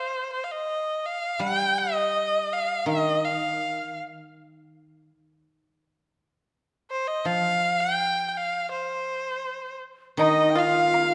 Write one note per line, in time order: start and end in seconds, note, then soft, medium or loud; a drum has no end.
0.00 0.32 C5 medium
0.32 0.45 C5 medium
0.44 0.53 F5 medium
0.51 1.07 D#5 medium
1.06 1.42 F5 medium
1.39 3.60 G3 soft
1.39 1.80 G5 medium
1.79 2.54 D#5 medium
2.53 2.88 F5 medium
2.86 5.07 D#3 soft
2.86 3.26 D#5 medium
3.25 3.98 F5 medium
6.91 7.09 C5 medium
7.07 7.27 D#5 medium
7.25 9.45 F3 soft
7.25 7.81 F5 medium
7.80 8.28 G5 medium
8.28 8.39 G5 medium
8.37 8.71 F5 medium
8.72 9.79 C5 medium
10.17 11.14 D#3 medium
10.17 10.54 D#4 medium
10.17 10.58 D#4 medium
10.17 10.60 D#5 medium
10.17 10.52 D#5 medium
10.17 high woodblock medium
10.50 10.59 G5 medium
10.55 11.14 F4 medium
10.55 11.14 F5 medium
10.94 high woodblock soft
10.94 low woodblock soft